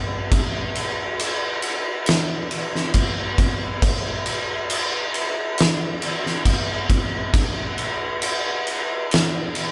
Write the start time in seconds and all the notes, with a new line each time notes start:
0.32 kick, crash
0.75 crash
1.19 crash
1.62 crash
2.06 snare, crash
2.51 crash
2.75 snare
2.94 kick, crash
3.38 kick, crash
3.82 kick, crash
4.26 crash
4.70 crash
5.14 crash
5.58 snare, crash
6.02 crash
6.26 snare
6.45 kick, crash
6.90 kick, crash
7.34 kick, crash
7.78 crash
8.22 crash
8.67 crash
9.11 snare, crash
9.55 crash